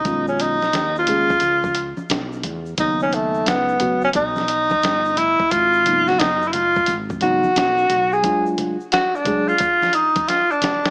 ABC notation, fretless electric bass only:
X:1
M:4/4
L:1/16
Q:"Swing 16ths" 1/4=88
K:Ebm
V:1 name="Fretless electric bass" clef=bass
=B,,,4 ^D,,4 _D,,3 z B,,,2 _F,,2 | E,,4 D,,4 =B,,,3 z =G,,,3 z | A,,,4 G,,,4 A,,,3 z C,,2 C,,2 | z16 |]